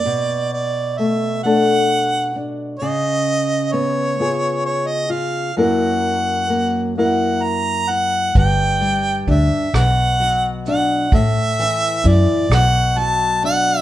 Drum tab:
HH |------|------|------|xxxxxx|
SD |------|------|------|---r--|
BD |------|------|------|o-o---|

HH |xxxxxx|
SD |---r--|
BD |o-o---|